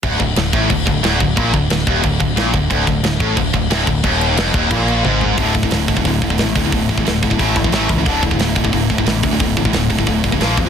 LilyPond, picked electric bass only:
\new Staff \with { instrumentName = "Picked electric bass" } { \clef bass \time 4/4 \key d \minor \tempo 4 = 179 d,,8 d,,8 d,,8 a,,8 d,,8 d,,8 d,,8 d,,8 | bes,,8 d,,8 d,,8 ees,,8 d,,8 d,,8 bes,,8 d,,8 | d,,8 d,,8 d,,8 a,,8 d,,8 d,,8 d,,8 d,,8 | ees,,4 f,,8 ees,,8 bes,,4 gis,,4 |
d,,4 d,,8 d,,8 d,,8 d,,8 a,,8 d,8 | d,,8 a,,8 d,,8 d,,8 a,,8 a,,8 a,,8 cis,8 | d,,4 d,,8 d,,8 d,,8 d,,8 a,,8 d,8 | d,,8 a,,8 d,,8 d,,8 d,,8 d,,8 bes,,8 f,8 | }